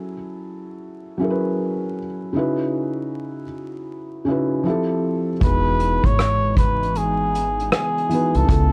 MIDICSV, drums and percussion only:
0, 0, Header, 1, 2, 480
1, 0, Start_track
1, 0, Key_signature, 4, "major"
1, 0, Tempo, 769231
1, 1458, Time_signature, 4, 2, 24, 8
1, 5444, End_track
2, 0, Start_track
2, 0, Title_t, "Drums"
2, 3378, Note_on_c, 9, 36, 106
2, 3385, Note_on_c, 9, 42, 69
2, 3440, Note_off_c, 9, 36, 0
2, 3448, Note_off_c, 9, 42, 0
2, 3618, Note_on_c, 9, 42, 65
2, 3680, Note_off_c, 9, 42, 0
2, 3767, Note_on_c, 9, 36, 83
2, 3782, Note_on_c, 9, 42, 47
2, 3829, Note_off_c, 9, 36, 0
2, 3844, Note_off_c, 9, 42, 0
2, 3862, Note_on_c, 9, 37, 97
2, 3869, Note_on_c, 9, 42, 73
2, 3924, Note_off_c, 9, 37, 0
2, 3932, Note_off_c, 9, 42, 0
2, 4098, Note_on_c, 9, 36, 84
2, 4104, Note_on_c, 9, 42, 66
2, 4160, Note_off_c, 9, 36, 0
2, 4167, Note_off_c, 9, 42, 0
2, 4262, Note_on_c, 9, 42, 44
2, 4324, Note_off_c, 9, 42, 0
2, 4339, Note_on_c, 9, 42, 66
2, 4401, Note_off_c, 9, 42, 0
2, 4587, Note_on_c, 9, 42, 62
2, 4649, Note_off_c, 9, 42, 0
2, 4739, Note_on_c, 9, 42, 46
2, 4802, Note_off_c, 9, 42, 0
2, 4818, Note_on_c, 9, 37, 117
2, 4818, Note_on_c, 9, 42, 73
2, 4880, Note_off_c, 9, 37, 0
2, 4881, Note_off_c, 9, 42, 0
2, 4978, Note_on_c, 9, 42, 31
2, 5040, Note_off_c, 9, 42, 0
2, 5057, Note_on_c, 9, 42, 64
2, 5120, Note_off_c, 9, 42, 0
2, 5207, Note_on_c, 9, 42, 43
2, 5270, Note_off_c, 9, 42, 0
2, 5296, Note_on_c, 9, 36, 105
2, 5304, Note_on_c, 9, 42, 72
2, 5359, Note_off_c, 9, 36, 0
2, 5366, Note_off_c, 9, 42, 0
2, 5444, End_track
0, 0, End_of_file